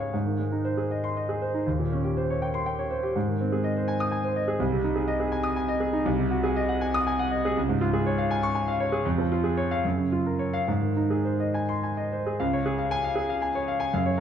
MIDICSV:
0, 0, Header, 1, 2, 480
1, 0, Start_track
1, 0, Key_signature, -4, "major"
1, 0, Tempo, 508044
1, 122, Time_signature, 6, 3, 24, 8
1, 2516, Tempo, 485044
1, 5876, Key_signature, -5, "major"
1, 5876, Tempo, 499584
1, 8756, Tempo, 531444
1, 9716, Tempo, 569801
1, 11636, Tempo, 507614
1, 13341, End_track
2, 0, Start_track
2, 0, Title_t, "Grand piano"
2, 0, Program_c, 0, 0
2, 0, Control_c, 0, 64, 127
2, 0, Note_on_c, 0, 37, 50
2, 0, Note_on_c, 0, 44, 39
2, 0, Note_on_c, 0, 56, 35
2, 0, Note_on_c, 0, 68, 39
2, 0, Note_on_c, 0, 73, 43
2, 0, Note_on_c, 0, 77, 39
2, 0, Note_on_c, 0, 80, 59
2, 124, Note_off_c, 0, 73, 0
2, 127, Note_off_c, 0, 44, 0
2, 127, Note_on_c, 0, 44, 54
2, 138, Control_c, 0, 64, 0
2, 141, Note_off_c, 0, 37, 0
2, 145, Note_off_c, 0, 56, 0
2, 145, Note_off_c, 0, 68, 0
2, 146, Note_off_c, 0, 80, 0
2, 148, Note_off_c, 0, 77, 0
2, 242, Note_on_c, 0, 51, 40
2, 323, Control_c, 0, 64, 127
2, 366, Note_on_c, 0, 56, 41
2, 442, Note_off_c, 0, 51, 0
2, 491, Note_on_c, 0, 63, 42
2, 565, Note_off_c, 0, 56, 0
2, 611, Note_on_c, 0, 72, 50
2, 688, Note_off_c, 0, 63, 0
2, 731, Note_on_c, 0, 68, 42
2, 807, Note_off_c, 0, 72, 0
2, 859, Note_on_c, 0, 75, 43
2, 926, Note_off_c, 0, 68, 0
2, 980, Note_on_c, 0, 84, 58
2, 1050, Note_off_c, 0, 75, 0
2, 1101, Note_on_c, 0, 75, 44
2, 1169, Note_off_c, 0, 84, 0
2, 1217, Note_on_c, 0, 68, 45
2, 1288, Note_off_c, 0, 75, 0
2, 1340, Note_on_c, 0, 72, 45
2, 1404, Note_off_c, 0, 68, 0
2, 1457, Note_on_c, 0, 63, 43
2, 1524, Note_off_c, 0, 72, 0
2, 1533, Note_off_c, 0, 44, 0
2, 1571, Note_off_c, 0, 63, 0
2, 1572, Note_on_c, 0, 39, 52
2, 1585, Control_c, 0, 64, 0
2, 1687, Note_on_c, 0, 46, 44
2, 1720, Control_c, 0, 64, 127
2, 1814, Note_on_c, 0, 61, 44
2, 1877, Note_off_c, 0, 46, 0
2, 1928, Note_on_c, 0, 67, 45
2, 2000, Note_off_c, 0, 61, 0
2, 2051, Note_on_c, 0, 72, 47
2, 2117, Note_off_c, 0, 67, 0
2, 2174, Note_on_c, 0, 73, 45
2, 2237, Note_off_c, 0, 72, 0
2, 2286, Note_on_c, 0, 79, 50
2, 2358, Note_off_c, 0, 73, 0
2, 2400, Note_on_c, 0, 84, 64
2, 2473, Note_off_c, 0, 79, 0
2, 2514, Note_on_c, 0, 79, 45
2, 2590, Note_off_c, 0, 84, 0
2, 2640, Note_on_c, 0, 73, 46
2, 2709, Note_off_c, 0, 79, 0
2, 2756, Note_on_c, 0, 72, 49
2, 2830, Note_off_c, 0, 73, 0
2, 2880, Note_on_c, 0, 67, 49
2, 2948, Note_off_c, 0, 72, 0
2, 2960, Note_off_c, 0, 39, 0
2, 2999, Note_off_c, 0, 67, 0
2, 3004, Note_on_c, 0, 44, 57
2, 3016, Control_c, 0, 64, 0
2, 3123, Note_on_c, 0, 51, 43
2, 3185, Control_c, 0, 64, 127
2, 3252, Note_on_c, 0, 60, 51
2, 3315, Note_off_c, 0, 51, 0
2, 3367, Note_on_c, 0, 68, 45
2, 3440, Note_off_c, 0, 60, 0
2, 3482, Note_on_c, 0, 75, 51
2, 3558, Note_off_c, 0, 68, 0
2, 3607, Note_on_c, 0, 72, 52
2, 3676, Note_off_c, 0, 75, 0
2, 3719, Note_on_c, 0, 80, 58
2, 3798, Note_off_c, 0, 72, 0
2, 3842, Note_on_c, 0, 87, 67
2, 3913, Note_off_c, 0, 80, 0
2, 3952, Note_on_c, 0, 80, 51
2, 4033, Note_off_c, 0, 87, 0
2, 4081, Note_on_c, 0, 72, 52
2, 4146, Note_off_c, 0, 80, 0
2, 4196, Note_on_c, 0, 75, 51
2, 4269, Note_off_c, 0, 72, 0
2, 4312, Note_on_c, 0, 68, 53
2, 4386, Note_off_c, 0, 75, 0
2, 4398, Note_off_c, 0, 44, 0
2, 4428, Note_on_c, 0, 36, 65
2, 4432, Note_off_c, 0, 68, 0
2, 4448, Control_c, 0, 64, 0
2, 4552, Note_on_c, 0, 48, 53
2, 4601, Control_c, 0, 64, 127
2, 4667, Note_on_c, 0, 63, 54
2, 4742, Note_off_c, 0, 48, 0
2, 4786, Note_on_c, 0, 68, 53
2, 4859, Note_off_c, 0, 63, 0
2, 4904, Note_on_c, 0, 75, 58
2, 4979, Note_off_c, 0, 68, 0
2, 5026, Note_on_c, 0, 68, 51
2, 5099, Note_off_c, 0, 75, 0
2, 5143, Note_on_c, 0, 80, 57
2, 5220, Note_off_c, 0, 68, 0
2, 5259, Note_on_c, 0, 87, 74
2, 5339, Note_off_c, 0, 80, 0
2, 5385, Note_on_c, 0, 80, 56
2, 5457, Note_off_c, 0, 87, 0
2, 5507, Note_on_c, 0, 75, 61
2, 5581, Note_off_c, 0, 80, 0
2, 5623, Note_on_c, 0, 68, 55
2, 5703, Note_off_c, 0, 75, 0
2, 5747, Note_on_c, 0, 63, 59
2, 5822, Note_off_c, 0, 68, 0
2, 5833, Note_off_c, 0, 36, 0
2, 5873, Note_off_c, 0, 63, 0
2, 5873, Note_on_c, 0, 36, 74
2, 5894, Control_c, 0, 64, 0
2, 6007, Note_on_c, 0, 48, 53
2, 6048, Control_c, 0, 64, 127
2, 6116, Note_on_c, 0, 66, 57
2, 6192, Note_off_c, 0, 48, 0
2, 6238, Note_on_c, 0, 68, 59
2, 6306, Note_off_c, 0, 66, 0
2, 6361, Note_on_c, 0, 75, 63
2, 6427, Note_off_c, 0, 68, 0
2, 6478, Note_on_c, 0, 78, 62
2, 6549, Note_off_c, 0, 75, 0
2, 6599, Note_on_c, 0, 80, 62
2, 6668, Note_off_c, 0, 78, 0
2, 6727, Note_on_c, 0, 87, 83
2, 6791, Note_off_c, 0, 80, 0
2, 6845, Note_on_c, 0, 80, 60
2, 6917, Note_off_c, 0, 87, 0
2, 6965, Note_on_c, 0, 78, 64
2, 7038, Note_off_c, 0, 80, 0
2, 7081, Note_on_c, 0, 75, 60
2, 7159, Note_off_c, 0, 78, 0
2, 7215, Note_on_c, 0, 68, 62
2, 7277, Note_off_c, 0, 75, 0
2, 7285, Note_off_c, 0, 36, 0
2, 7321, Note_on_c, 0, 37, 69
2, 7330, Note_off_c, 0, 68, 0
2, 7340, Control_c, 0, 64, 0
2, 7443, Note_on_c, 0, 44, 57
2, 7517, Control_c, 0, 64, 127
2, 7561, Note_on_c, 0, 65, 63
2, 7632, Note_off_c, 0, 44, 0
2, 7678, Note_on_c, 0, 68, 58
2, 7750, Note_off_c, 0, 65, 0
2, 7802, Note_on_c, 0, 73, 59
2, 7867, Note_off_c, 0, 68, 0
2, 7915, Note_on_c, 0, 77, 58
2, 7987, Note_off_c, 0, 73, 0
2, 8036, Note_on_c, 0, 80, 66
2, 8103, Note_off_c, 0, 77, 0
2, 8156, Note_on_c, 0, 85, 81
2, 8223, Note_off_c, 0, 80, 0
2, 8266, Note_on_c, 0, 80, 60
2, 8343, Note_off_c, 0, 85, 0
2, 8393, Note_on_c, 0, 77, 61
2, 8460, Note_off_c, 0, 80, 0
2, 8512, Note_on_c, 0, 73, 59
2, 8585, Note_off_c, 0, 77, 0
2, 8629, Note_on_c, 0, 68, 59
2, 8708, Note_off_c, 0, 73, 0
2, 8715, Note_off_c, 0, 37, 0
2, 8754, Note_off_c, 0, 68, 0
2, 8754, Note_on_c, 0, 41, 72
2, 8772, Control_c, 0, 64, 0
2, 8871, Note_on_c, 0, 53, 52
2, 8899, Control_c, 0, 64, 127
2, 8992, Note_on_c, 0, 65, 56
2, 9060, Note_off_c, 0, 53, 0
2, 9101, Note_on_c, 0, 68, 52
2, 9181, Note_off_c, 0, 65, 0
2, 9223, Note_on_c, 0, 73, 61
2, 9296, Note_off_c, 0, 68, 0
2, 9348, Note_on_c, 0, 77, 65
2, 9418, Note_off_c, 0, 73, 0
2, 9447, Note_off_c, 0, 41, 0
2, 9470, Note_off_c, 0, 77, 0
2, 9470, Note_on_c, 0, 42, 62
2, 9488, Control_c, 0, 64, 0
2, 9589, Note_on_c, 0, 49, 44
2, 9644, Control_c, 0, 64, 127
2, 9719, Note_on_c, 0, 65, 49
2, 9784, Note_off_c, 0, 49, 0
2, 9836, Note_on_c, 0, 70, 50
2, 9903, Note_off_c, 0, 65, 0
2, 9945, Note_on_c, 0, 73, 48
2, 10022, Note_off_c, 0, 70, 0
2, 10067, Note_on_c, 0, 77, 70
2, 10138, Note_off_c, 0, 73, 0
2, 10168, Note_off_c, 0, 42, 0
2, 10187, Note_on_c, 0, 44, 60
2, 10188, Note_off_c, 0, 77, 0
2, 10206, Control_c, 0, 64, 0
2, 10304, Note_on_c, 0, 51, 42
2, 10394, Control_c, 0, 64, 127
2, 10429, Note_on_c, 0, 63, 44
2, 10503, Note_off_c, 0, 51, 0
2, 10546, Note_on_c, 0, 68, 45
2, 10626, Note_off_c, 0, 63, 0
2, 10669, Note_on_c, 0, 72, 48
2, 10745, Note_off_c, 0, 68, 0
2, 10795, Note_on_c, 0, 75, 45
2, 10866, Note_off_c, 0, 72, 0
2, 10916, Note_on_c, 0, 80, 50
2, 10989, Note_off_c, 0, 75, 0
2, 11038, Note_on_c, 0, 84, 58
2, 11111, Note_off_c, 0, 80, 0
2, 11160, Note_on_c, 0, 80, 41
2, 11233, Note_off_c, 0, 84, 0
2, 11277, Note_on_c, 0, 75, 47
2, 11356, Note_off_c, 0, 80, 0
2, 11404, Note_on_c, 0, 72, 44
2, 11475, Note_off_c, 0, 75, 0
2, 11524, Note_on_c, 0, 68, 46
2, 11593, Note_off_c, 0, 72, 0
2, 11603, Note_off_c, 0, 44, 0
2, 11635, Note_on_c, 0, 37, 67
2, 11635, Note_on_c, 0, 77, 58
2, 11637, Note_off_c, 0, 68, 0
2, 11653, Control_c, 0, 64, 0
2, 11763, Note_on_c, 0, 73, 57
2, 11782, Control_c, 0, 64, 127
2, 11829, Note_off_c, 0, 77, 0
2, 11881, Note_on_c, 0, 68, 58
2, 11951, Note_off_c, 0, 73, 0
2, 12000, Note_on_c, 0, 77, 54
2, 12069, Note_off_c, 0, 68, 0
2, 12121, Note_on_c, 0, 80, 84
2, 12188, Note_off_c, 0, 77, 0
2, 12240, Note_on_c, 0, 77, 59
2, 12308, Note_off_c, 0, 80, 0
2, 12351, Note_on_c, 0, 68, 58
2, 12429, Note_off_c, 0, 77, 0
2, 12481, Note_on_c, 0, 77, 54
2, 12546, Note_off_c, 0, 68, 0
2, 12601, Note_on_c, 0, 80, 53
2, 12673, Note_off_c, 0, 77, 0
2, 12726, Note_on_c, 0, 73, 59
2, 12792, Note_off_c, 0, 80, 0
2, 12848, Note_on_c, 0, 77, 58
2, 12914, Note_off_c, 0, 73, 0
2, 12959, Note_on_c, 0, 80, 63
2, 13034, Note_off_c, 0, 77, 0
2, 13038, Note_off_c, 0, 37, 0
2, 13078, Note_off_c, 0, 80, 0
2, 13087, Note_on_c, 0, 42, 67
2, 13091, Note_on_c, 0, 77, 62
2, 13096, Control_c, 0, 64, 0
2, 13206, Note_on_c, 0, 73, 59
2, 13250, Control_c, 0, 64, 127
2, 13275, Note_off_c, 0, 77, 0
2, 13341, Note_off_c, 0, 42, 0
2, 13341, Note_off_c, 0, 73, 0
2, 13341, End_track
0, 0, End_of_file